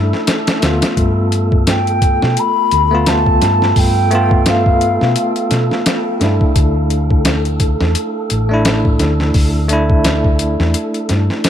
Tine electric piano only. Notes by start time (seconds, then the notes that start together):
Already playing: A3 D4 E4
0.61 A3 B3
0.65 F4
2.91 A3 B3 F4
4.11 A3 B3
4.15 F4
6.20 A3 D4
6.24 E4
8.49 A3 D4
8.53 E4
9.68 A3 D4
9.73 E4